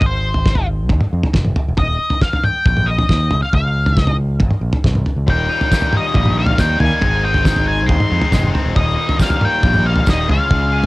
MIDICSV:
0, 0, Header, 1, 6, 480
1, 0, Start_track
1, 0, Tempo, 436999
1, 25, Time_signature, 4, 2, 24, 8
1, 11930, End_track
2, 0, Start_track
2, 0, Title_t, "Lead electric guitar"
2, 0, Program_c, 0, 29
2, 68, Note_on_c, 0, 72, 72
2, 727, Note_off_c, 0, 72, 0
2, 1958, Note_on_c, 0, 75, 87
2, 2405, Note_off_c, 0, 75, 0
2, 2440, Note_on_c, 0, 77, 90
2, 2683, Note_on_c, 0, 79, 92
2, 2687, Note_off_c, 0, 77, 0
2, 2925, Note_off_c, 0, 79, 0
2, 2939, Note_on_c, 0, 79, 96
2, 3155, Note_on_c, 0, 75, 94
2, 3176, Note_off_c, 0, 79, 0
2, 3757, Note_off_c, 0, 75, 0
2, 3761, Note_on_c, 0, 77, 83
2, 3884, Note_off_c, 0, 77, 0
2, 3898, Note_on_c, 0, 77, 80
2, 4403, Note_off_c, 0, 77, 0
2, 4403, Note_on_c, 0, 75, 80
2, 4565, Note_off_c, 0, 75, 0
2, 5821, Note_on_c, 0, 79, 84
2, 6548, Note_off_c, 0, 79, 0
2, 6554, Note_on_c, 0, 75, 77
2, 7012, Note_off_c, 0, 75, 0
2, 7017, Note_on_c, 0, 77, 87
2, 7244, Note_on_c, 0, 79, 82
2, 7251, Note_off_c, 0, 77, 0
2, 7466, Note_off_c, 0, 79, 0
2, 7470, Note_on_c, 0, 80, 103
2, 7956, Note_off_c, 0, 80, 0
2, 7961, Note_on_c, 0, 79, 97
2, 8426, Note_off_c, 0, 79, 0
2, 8430, Note_on_c, 0, 80, 79
2, 8638, Note_on_c, 0, 84, 92
2, 8652, Note_off_c, 0, 80, 0
2, 9327, Note_off_c, 0, 84, 0
2, 9625, Note_on_c, 0, 75, 96
2, 10071, Note_off_c, 0, 75, 0
2, 10131, Note_on_c, 0, 77, 97
2, 10365, Note_off_c, 0, 77, 0
2, 10379, Note_on_c, 0, 79, 96
2, 10809, Note_off_c, 0, 79, 0
2, 10837, Note_on_c, 0, 77, 91
2, 11077, Note_off_c, 0, 77, 0
2, 11098, Note_on_c, 0, 75, 89
2, 11322, Note_off_c, 0, 75, 0
2, 11326, Note_on_c, 0, 77, 86
2, 11930, Note_off_c, 0, 77, 0
2, 11930, End_track
3, 0, Start_track
3, 0, Title_t, "Distorted electric guitar"
3, 0, Program_c, 1, 30
3, 5787, Note_on_c, 1, 39, 85
3, 5801, Note_on_c, 1, 46, 86
3, 5805, Note_on_c, 1, 51, 80
3, 5817, Note_on_c, 1, 55, 92
3, 5819, Note_on_c, 1, 58, 93
3, 5823, Note_on_c, 1, 63, 95
3, 6023, Note_off_c, 1, 63, 0
3, 6028, Note_on_c, 1, 63, 58
3, 6030, Note_off_c, 1, 58, 0
3, 6043, Note_on_c, 1, 58, 63
3, 6044, Note_off_c, 1, 55, 0
3, 6049, Note_off_c, 1, 51, 0
3, 6058, Note_on_c, 1, 55, 58
3, 6063, Note_on_c, 1, 51, 51
3, 6265, Note_off_c, 1, 39, 0
3, 6278, Note_off_c, 1, 46, 0
3, 6278, Note_on_c, 1, 39, 76
3, 6285, Note_off_c, 1, 51, 0
3, 6293, Note_off_c, 1, 55, 0
3, 6295, Note_on_c, 1, 46, 95
3, 6299, Note_on_c, 1, 51, 97
3, 6300, Note_off_c, 1, 58, 0
3, 6306, Note_on_c, 1, 55, 98
3, 6309, Note_off_c, 1, 63, 0
3, 6313, Note_on_c, 1, 58, 93
3, 6313, Note_on_c, 1, 63, 86
3, 6999, Note_off_c, 1, 63, 0
3, 7003, Note_on_c, 1, 63, 64
3, 7007, Note_off_c, 1, 58, 0
3, 7015, Note_off_c, 1, 55, 0
3, 7020, Note_on_c, 1, 58, 67
3, 7028, Note_off_c, 1, 51, 0
3, 7028, Note_on_c, 1, 55, 59
3, 7041, Note_on_c, 1, 51, 62
3, 7214, Note_off_c, 1, 51, 0
3, 7227, Note_on_c, 1, 51, 72
3, 7234, Note_off_c, 1, 39, 0
3, 7236, Note_off_c, 1, 55, 0
3, 7242, Note_off_c, 1, 46, 0
3, 7247, Note_off_c, 1, 58, 0
3, 7249, Note_on_c, 1, 55, 66
3, 7260, Note_on_c, 1, 58, 85
3, 7262, Note_off_c, 1, 63, 0
3, 7267, Note_on_c, 1, 63, 83
3, 7469, Note_off_c, 1, 63, 0
3, 7473, Note_on_c, 1, 63, 72
3, 7474, Note_off_c, 1, 58, 0
3, 7487, Note_off_c, 1, 55, 0
3, 7487, Note_on_c, 1, 58, 72
3, 7497, Note_off_c, 1, 51, 0
3, 7500, Note_on_c, 1, 55, 62
3, 7511, Note_on_c, 1, 51, 59
3, 7697, Note_off_c, 1, 51, 0
3, 7698, Note_on_c, 1, 44, 78
3, 7704, Note_off_c, 1, 58, 0
3, 7711, Note_off_c, 1, 55, 0
3, 7711, Note_on_c, 1, 51, 89
3, 7719, Note_on_c, 1, 56, 94
3, 7731, Note_off_c, 1, 63, 0
3, 7733, Note_on_c, 1, 60, 87
3, 7736, Note_on_c, 1, 63, 95
3, 7932, Note_off_c, 1, 63, 0
3, 7936, Note_on_c, 1, 63, 65
3, 7943, Note_off_c, 1, 60, 0
3, 7956, Note_on_c, 1, 60, 66
3, 7958, Note_off_c, 1, 56, 0
3, 7971, Note_on_c, 1, 56, 52
3, 8167, Note_off_c, 1, 44, 0
3, 8177, Note_off_c, 1, 51, 0
3, 8180, Note_on_c, 1, 44, 81
3, 8183, Note_off_c, 1, 56, 0
3, 8190, Note_on_c, 1, 51, 85
3, 8191, Note_off_c, 1, 60, 0
3, 8196, Note_on_c, 1, 56, 91
3, 8203, Note_off_c, 1, 63, 0
3, 8204, Note_on_c, 1, 60, 90
3, 8208, Note_on_c, 1, 63, 94
3, 8888, Note_off_c, 1, 63, 0
3, 8898, Note_off_c, 1, 60, 0
3, 8902, Note_on_c, 1, 63, 68
3, 8911, Note_on_c, 1, 60, 73
3, 8916, Note_off_c, 1, 56, 0
3, 8929, Note_on_c, 1, 56, 62
3, 9126, Note_off_c, 1, 51, 0
3, 9136, Note_off_c, 1, 56, 0
3, 9139, Note_on_c, 1, 51, 77
3, 9140, Note_off_c, 1, 60, 0
3, 9142, Note_off_c, 1, 44, 0
3, 9150, Note_on_c, 1, 56, 74
3, 9154, Note_on_c, 1, 60, 80
3, 9156, Note_off_c, 1, 63, 0
3, 9169, Note_on_c, 1, 63, 86
3, 9359, Note_off_c, 1, 63, 0
3, 9372, Note_on_c, 1, 63, 72
3, 9375, Note_off_c, 1, 60, 0
3, 9388, Note_on_c, 1, 60, 66
3, 9395, Note_off_c, 1, 56, 0
3, 9408, Note_on_c, 1, 56, 56
3, 9604, Note_off_c, 1, 63, 0
3, 9607, Note_off_c, 1, 51, 0
3, 9607, Note_on_c, 1, 39, 83
3, 9612, Note_off_c, 1, 60, 0
3, 9619, Note_on_c, 1, 46, 97
3, 9622, Note_off_c, 1, 56, 0
3, 9631, Note_on_c, 1, 51, 84
3, 9632, Note_on_c, 1, 55, 95
3, 9636, Note_on_c, 1, 58, 99
3, 9646, Note_on_c, 1, 63, 90
3, 9830, Note_off_c, 1, 63, 0
3, 9843, Note_on_c, 1, 63, 65
3, 9848, Note_off_c, 1, 58, 0
3, 9855, Note_off_c, 1, 55, 0
3, 9861, Note_on_c, 1, 58, 66
3, 9868, Note_on_c, 1, 55, 58
3, 9869, Note_off_c, 1, 51, 0
3, 9882, Note_on_c, 1, 51, 55
3, 10076, Note_off_c, 1, 39, 0
3, 10079, Note_off_c, 1, 46, 0
3, 10088, Note_off_c, 1, 51, 0
3, 10089, Note_on_c, 1, 39, 78
3, 10092, Note_on_c, 1, 46, 93
3, 10098, Note_off_c, 1, 55, 0
3, 10101, Note_on_c, 1, 51, 97
3, 10106, Note_off_c, 1, 58, 0
3, 10109, Note_off_c, 1, 63, 0
3, 10111, Note_on_c, 1, 55, 96
3, 10119, Note_on_c, 1, 58, 97
3, 10122, Note_on_c, 1, 63, 93
3, 10792, Note_off_c, 1, 63, 0
3, 10805, Note_on_c, 1, 63, 73
3, 10806, Note_off_c, 1, 58, 0
3, 10816, Note_off_c, 1, 55, 0
3, 10820, Note_on_c, 1, 58, 68
3, 10828, Note_off_c, 1, 51, 0
3, 10829, Note_on_c, 1, 55, 67
3, 10841, Note_on_c, 1, 51, 59
3, 11029, Note_off_c, 1, 51, 0
3, 11043, Note_on_c, 1, 51, 75
3, 11052, Note_off_c, 1, 55, 0
3, 11056, Note_off_c, 1, 39, 0
3, 11058, Note_off_c, 1, 46, 0
3, 11058, Note_off_c, 1, 58, 0
3, 11065, Note_on_c, 1, 55, 74
3, 11068, Note_off_c, 1, 63, 0
3, 11072, Note_on_c, 1, 58, 78
3, 11081, Note_on_c, 1, 63, 84
3, 11279, Note_off_c, 1, 51, 0
3, 11288, Note_off_c, 1, 63, 0
3, 11290, Note_off_c, 1, 55, 0
3, 11292, Note_off_c, 1, 58, 0
3, 11292, Note_on_c, 1, 68, 79
3, 11296, Note_on_c, 1, 65, 79
3, 11306, Note_on_c, 1, 61, 77
3, 11311, Note_on_c, 1, 56, 72
3, 11320, Note_on_c, 1, 49, 69
3, 11512, Note_off_c, 1, 49, 0
3, 11525, Note_off_c, 1, 56, 0
3, 11525, Note_on_c, 1, 49, 77
3, 11534, Note_off_c, 1, 61, 0
3, 11539, Note_on_c, 1, 56, 88
3, 11546, Note_off_c, 1, 68, 0
3, 11547, Note_off_c, 1, 65, 0
3, 11548, Note_on_c, 1, 61, 87
3, 11559, Note_on_c, 1, 68, 94
3, 11560, Note_on_c, 1, 65, 92
3, 11761, Note_off_c, 1, 68, 0
3, 11775, Note_on_c, 1, 68, 75
3, 11784, Note_off_c, 1, 65, 0
3, 11792, Note_off_c, 1, 61, 0
3, 11797, Note_on_c, 1, 65, 62
3, 11805, Note_on_c, 1, 61, 53
3, 11930, Note_off_c, 1, 49, 0
3, 11930, Note_off_c, 1, 56, 0
3, 11930, Note_off_c, 1, 61, 0
3, 11930, Note_off_c, 1, 65, 0
3, 11930, Note_off_c, 1, 68, 0
3, 11930, End_track
4, 0, Start_track
4, 0, Title_t, "Overdriven electric guitar"
4, 0, Program_c, 2, 29
4, 6513, Note_on_c, 2, 58, 61
4, 6753, Note_on_c, 2, 55, 75
4, 6986, Note_on_c, 2, 51, 61
4, 7209, Note_off_c, 2, 55, 0
4, 7454, Note_off_c, 2, 58, 0
4, 7708, Note_off_c, 2, 51, 0
4, 8421, Note_on_c, 2, 60, 66
4, 8658, Note_on_c, 2, 56, 79
4, 8904, Note_on_c, 2, 51, 68
4, 9128, Note_off_c, 2, 56, 0
4, 9361, Note_off_c, 2, 60, 0
4, 9624, Note_off_c, 2, 51, 0
4, 10346, Note_on_c, 2, 58, 65
4, 10587, Note_on_c, 2, 55, 68
4, 11049, Note_off_c, 2, 55, 0
4, 11305, Note_off_c, 2, 58, 0
4, 11930, End_track
5, 0, Start_track
5, 0, Title_t, "Fingered electric bass"
5, 0, Program_c, 3, 33
5, 20, Note_on_c, 3, 32, 90
5, 986, Note_off_c, 3, 32, 0
5, 986, Note_on_c, 3, 39, 86
5, 1090, Note_off_c, 3, 39, 0
5, 1238, Note_on_c, 3, 41, 81
5, 1337, Note_off_c, 3, 41, 0
5, 1473, Note_on_c, 3, 29, 85
5, 1676, Note_off_c, 3, 29, 0
5, 1849, Note_on_c, 3, 28, 84
5, 1945, Note_off_c, 3, 28, 0
5, 1956, Note_on_c, 3, 27, 86
5, 2159, Note_off_c, 3, 27, 0
5, 2919, Note_on_c, 3, 34, 104
5, 3324, Note_off_c, 3, 34, 0
5, 3407, Note_on_c, 3, 39, 81
5, 3606, Note_off_c, 3, 39, 0
5, 3651, Note_on_c, 3, 37, 80
5, 3748, Note_off_c, 3, 37, 0
5, 3882, Note_on_c, 3, 37, 84
5, 4841, Note_on_c, 3, 32, 90
5, 4858, Note_off_c, 3, 37, 0
5, 4941, Note_off_c, 3, 32, 0
5, 5067, Note_on_c, 3, 34, 85
5, 5173, Note_off_c, 3, 34, 0
5, 5325, Note_on_c, 3, 36, 84
5, 5524, Note_off_c, 3, 36, 0
5, 5673, Note_on_c, 3, 37, 69
5, 5776, Note_off_c, 3, 37, 0
5, 5803, Note_on_c, 3, 27, 88
5, 6002, Note_off_c, 3, 27, 0
5, 6756, Note_on_c, 3, 34, 94
5, 7158, Note_off_c, 3, 34, 0
5, 7234, Note_on_c, 3, 39, 89
5, 7435, Note_off_c, 3, 39, 0
5, 7470, Note_on_c, 3, 39, 81
5, 7572, Note_off_c, 3, 39, 0
5, 7712, Note_on_c, 3, 32, 86
5, 8669, Note_off_c, 3, 32, 0
5, 8669, Note_on_c, 3, 39, 93
5, 8769, Note_off_c, 3, 39, 0
5, 8913, Note_on_c, 3, 41, 95
5, 9011, Note_off_c, 3, 41, 0
5, 9144, Note_on_c, 3, 29, 93
5, 9346, Note_off_c, 3, 29, 0
5, 9510, Note_on_c, 3, 28, 74
5, 9609, Note_off_c, 3, 28, 0
5, 9625, Note_on_c, 3, 27, 95
5, 9827, Note_off_c, 3, 27, 0
5, 10582, Note_on_c, 3, 34, 98
5, 10987, Note_off_c, 3, 34, 0
5, 11067, Note_on_c, 3, 27, 87
5, 11268, Note_off_c, 3, 27, 0
5, 11303, Note_on_c, 3, 37, 89
5, 11405, Note_off_c, 3, 37, 0
5, 11548, Note_on_c, 3, 37, 88
5, 11930, Note_off_c, 3, 37, 0
5, 11930, End_track
6, 0, Start_track
6, 0, Title_t, "Drums"
6, 10, Note_on_c, 9, 43, 83
6, 20, Note_on_c, 9, 36, 107
6, 120, Note_off_c, 9, 43, 0
6, 130, Note_off_c, 9, 36, 0
6, 377, Note_on_c, 9, 43, 78
6, 487, Note_off_c, 9, 43, 0
6, 501, Note_on_c, 9, 36, 102
6, 504, Note_on_c, 9, 38, 81
6, 607, Note_on_c, 9, 43, 88
6, 611, Note_off_c, 9, 36, 0
6, 614, Note_off_c, 9, 38, 0
6, 717, Note_off_c, 9, 43, 0
6, 980, Note_on_c, 9, 43, 83
6, 986, Note_on_c, 9, 36, 97
6, 1090, Note_off_c, 9, 43, 0
6, 1096, Note_off_c, 9, 36, 0
6, 1104, Note_on_c, 9, 47, 73
6, 1214, Note_off_c, 9, 47, 0
6, 1355, Note_on_c, 9, 43, 90
6, 1465, Note_off_c, 9, 43, 0
6, 1466, Note_on_c, 9, 47, 76
6, 1471, Note_on_c, 9, 36, 101
6, 1479, Note_on_c, 9, 38, 80
6, 1576, Note_off_c, 9, 47, 0
6, 1581, Note_off_c, 9, 36, 0
6, 1588, Note_on_c, 9, 47, 71
6, 1589, Note_off_c, 9, 38, 0
6, 1698, Note_off_c, 9, 47, 0
6, 1713, Note_on_c, 9, 43, 91
6, 1823, Note_off_c, 9, 43, 0
6, 1945, Note_on_c, 9, 43, 78
6, 1951, Note_on_c, 9, 36, 102
6, 2055, Note_off_c, 9, 43, 0
6, 2060, Note_off_c, 9, 36, 0
6, 2309, Note_on_c, 9, 43, 78
6, 2418, Note_off_c, 9, 43, 0
6, 2433, Note_on_c, 9, 36, 106
6, 2434, Note_on_c, 9, 38, 83
6, 2543, Note_off_c, 9, 36, 0
6, 2544, Note_off_c, 9, 38, 0
6, 2562, Note_on_c, 9, 43, 84
6, 2672, Note_off_c, 9, 43, 0
6, 2677, Note_on_c, 9, 47, 82
6, 2786, Note_off_c, 9, 47, 0
6, 2920, Note_on_c, 9, 36, 111
6, 2921, Note_on_c, 9, 43, 85
6, 3029, Note_off_c, 9, 36, 0
6, 3031, Note_off_c, 9, 43, 0
6, 3042, Note_on_c, 9, 47, 73
6, 3151, Note_off_c, 9, 47, 0
6, 3280, Note_on_c, 9, 43, 85
6, 3390, Note_off_c, 9, 43, 0
6, 3397, Note_on_c, 9, 36, 100
6, 3410, Note_on_c, 9, 38, 69
6, 3507, Note_off_c, 9, 36, 0
6, 3520, Note_off_c, 9, 38, 0
6, 3633, Note_on_c, 9, 43, 91
6, 3742, Note_off_c, 9, 43, 0
6, 3880, Note_on_c, 9, 36, 110
6, 3885, Note_on_c, 9, 43, 82
6, 3989, Note_off_c, 9, 36, 0
6, 3995, Note_off_c, 9, 43, 0
6, 4243, Note_on_c, 9, 43, 81
6, 4353, Note_off_c, 9, 43, 0
6, 4359, Note_on_c, 9, 36, 106
6, 4369, Note_on_c, 9, 38, 69
6, 4469, Note_off_c, 9, 36, 0
6, 4473, Note_on_c, 9, 43, 89
6, 4478, Note_off_c, 9, 38, 0
6, 4583, Note_off_c, 9, 43, 0
6, 4831, Note_on_c, 9, 43, 80
6, 4837, Note_on_c, 9, 36, 111
6, 4941, Note_off_c, 9, 43, 0
6, 4947, Note_off_c, 9, 36, 0
6, 4949, Note_on_c, 9, 47, 65
6, 5059, Note_off_c, 9, 47, 0
6, 5194, Note_on_c, 9, 43, 92
6, 5303, Note_off_c, 9, 43, 0
6, 5319, Note_on_c, 9, 36, 110
6, 5321, Note_on_c, 9, 47, 77
6, 5334, Note_on_c, 9, 38, 75
6, 5429, Note_off_c, 9, 36, 0
6, 5431, Note_off_c, 9, 47, 0
6, 5440, Note_on_c, 9, 47, 78
6, 5444, Note_off_c, 9, 38, 0
6, 5549, Note_off_c, 9, 47, 0
6, 5559, Note_on_c, 9, 43, 79
6, 5669, Note_off_c, 9, 43, 0
6, 5799, Note_on_c, 9, 43, 76
6, 5800, Note_on_c, 9, 36, 101
6, 5909, Note_off_c, 9, 36, 0
6, 5909, Note_off_c, 9, 43, 0
6, 6163, Note_on_c, 9, 43, 82
6, 6273, Note_off_c, 9, 43, 0
6, 6278, Note_on_c, 9, 36, 102
6, 6282, Note_on_c, 9, 54, 86
6, 6292, Note_on_c, 9, 38, 74
6, 6388, Note_off_c, 9, 36, 0
6, 6391, Note_on_c, 9, 43, 81
6, 6392, Note_off_c, 9, 54, 0
6, 6401, Note_off_c, 9, 38, 0
6, 6501, Note_off_c, 9, 43, 0
6, 6509, Note_on_c, 9, 47, 79
6, 6619, Note_off_c, 9, 47, 0
6, 6746, Note_on_c, 9, 43, 84
6, 6755, Note_on_c, 9, 36, 106
6, 6856, Note_off_c, 9, 43, 0
6, 6865, Note_off_c, 9, 36, 0
6, 6872, Note_on_c, 9, 47, 78
6, 6982, Note_off_c, 9, 47, 0
6, 7099, Note_on_c, 9, 43, 88
6, 7209, Note_off_c, 9, 43, 0
6, 7231, Note_on_c, 9, 36, 99
6, 7234, Note_on_c, 9, 38, 81
6, 7235, Note_on_c, 9, 54, 88
6, 7340, Note_off_c, 9, 36, 0
6, 7344, Note_off_c, 9, 38, 0
6, 7345, Note_off_c, 9, 54, 0
6, 7470, Note_on_c, 9, 43, 87
6, 7580, Note_off_c, 9, 43, 0
6, 7704, Note_on_c, 9, 43, 79
6, 7710, Note_on_c, 9, 36, 107
6, 7814, Note_off_c, 9, 43, 0
6, 7820, Note_off_c, 9, 36, 0
6, 8064, Note_on_c, 9, 43, 72
6, 8174, Note_off_c, 9, 43, 0
6, 8186, Note_on_c, 9, 36, 101
6, 8191, Note_on_c, 9, 54, 89
6, 8194, Note_on_c, 9, 38, 82
6, 8295, Note_off_c, 9, 36, 0
6, 8301, Note_off_c, 9, 54, 0
6, 8304, Note_off_c, 9, 38, 0
6, 8307, Note_on_c, 9, 43, 78
6, 8417, Note_off_c, 9, 43, 0
6, 8666, Note_on_c, 9, 36, 105
6, 8669, Note_on_c, 9, 43, 82
6, 8776, Note_off_c, 9, 36, 0
6, 8779, Note_off_c, 9, 43, 0
6, 8789, Note_on_c, 9, 47, 71
6, 8899, Note_off_c, 9, 47, 0
6, 9023, Note_on_c, 9, 43, 86
6, 9133, Note_off_c, 9, 43, 0
6, 9140, Note_on_c, 9, 47, 80
6, 9142, Note_on_c, 9, 36, 103
6, 9149, Note_on_c, 9, 54, 87
6, 9153, Note_on_c, 9, 38, 79
6, 9250, Note_off_c, 9, 47, 0
6, 9252, Note_off_c, 9, 36, 0
6, 9258, Note_off_c, 9, 54, 0
6, 9261, Note_on_c, 9, 47, 68
6, 9263, Note_off_c, 9, 38, 0
6, 9371, Note_off_c, 9, 47, 0
6, 9391, Note_on_c, 9, 43, 86
6, 9501, Note_off_c, 9, 43, 0
6, 9623, Note_on_c, 9, 43, 77
6, 9624, Note_on_c, 9, 36, 105
6, 9733, Note_off_c, 9, 43, 0
6, 9734, Note_off_c, 9, 36, 0
6, 9984, Note_on_c, 9, 43, 80
6, 10094, Note_off_c, 9, 43, 0
6, 10100, Note_on_c, 9, 36, 101
6, 10101, Note_on_c, 9, 54, 90
6, 10116, Note_on_c, 9, 38, 74
6, 10209, Note_off_c, 9, 36, 0
6, 10210, Note_off_c, 9, 54, 0
6, 10216, Note_on_c, 9, 43, 87
6, 10226, Note_off_c, 9, 38, 0
6, 10326, Note_off_c, 9, 43, 0
6, 10338, Note_on_c, 9, 47, 77
6, 10448, Note_off_c, 9, 47, 0
6, 10580, Note_on_c, 9, 36, 115
6, 10581, Note_on_c, 9, 43, 81
6, 10690, Note_off_c, 9, 36, 0
6, 10691, Note_off_c, 9, 43, 0
6, 10699, Note_on_c, 9, 47, 73
6, 10809, Note_off_c, 9, 47, 0
6, 10936, Note_on_c, 9, 43, 90
6, 11046, Note_off_c, 9, 43, 0
6, 11055, Note_on_c, 9, 54, 85
6, 11063, Note_on_c, 9, 36, 110
6, 11084, Note_on_c, 9, 38, 70
6, 11165, Note_off_c, 9, 54, 0
6, 11173, Note_off_c, 9, 36, 0
6, 11194, Note_off_c, 9, 38, 0
6, 11308, Note_on_c, 9, 43, 85
6, 11418, Note_off_c, 9, 43, 0
6, 11541, Note_on_c, 9, 43, 81
6, 11542, Note_on_c, 9, 36, 107
6, 11651, Note_off_c, 9, 43, 0
6, 11652, Note_off_c, 9, 36, 0
6, 11930, End_track
0, 0, End_of_file